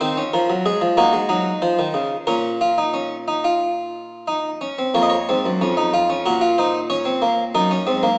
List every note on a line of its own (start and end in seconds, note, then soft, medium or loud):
0.01 0.21 D#3 medium
0.01 0.17 C4 medium
0.01 0.21 C5 medium
0.17 0.96 C#4 medium
0.33 0.49 F3 medium
0.33 0.54 A#4 medium
0.49 0.65 F#3 medium
0.66 0.82 G#3 medium
0.66 0.86 G#4 medium
0.81 0.97 F3 medium
0.97 1.13 A#3 medium
0.97 1.18 D#4 medium
0.97 1.61 F#4 medium
1.13 1.30 G#3 medium
1.29 1.50 F#3 medium
1.29 2.25 D#4 medium
1.62 1.78 F3 medium
1.62 2.26 C5 medium
1.79 1.95 D#3 medium
1.94 2.15 C#3 medium
2.27 4.57 A#2 medium
2.27 2.48 C#4 medium
2.27 4.57 A#4 medium
2.61 2.77 F4 medium
2.78 2.94 D#4 medium
2.94 3.15 C#4 medium
3.28 3.44 D#4 medium
3.44 4.25 F4 medium
4.28 4.48 D#4 medium
4.61 4.77 C#4 medium
4.79 4.94 C4 medium
4.94 5.15 F2 medium
4.94 5.15 A#3 medium
4.94 5.01 C#5 medium
5.03 5.09 D#5 medium
5.10 6.22 C#5 medium
5.29 5.44 G#2 medium
5.29 5.48 C4 medium
5.46 5.60 F#2 medium
5.61 6.23 F2 medium
5.61 5.76 C#4 medium
5.77 5.92 D#4 medium
5.93 6.09 F4 medium
6.10 6.25 C#4 medium
6.26 7.50 A#2 medium
6.26 6.41 F#4 medium
6.26 6.45 A#4 medium
6.41 6.57 F4 medium
6.58 6.78 D#4 medium
6.58 6.78 C5 medium
6.90 7.05 C#4 medium
6.90 7.52 C#5 medium
7.05 7.21 C4 medium
7.22 7.42 A#3 medium
7.55 7.74 F#2 medium
7.55 7.70 D#4 medium
7.55 8.18 A#4 medium
7.71 7.86 C#4 medium
7.87 8.06 G#2 medium
7.87 8.02 C4 medium
8.03 8.17 A#3 medium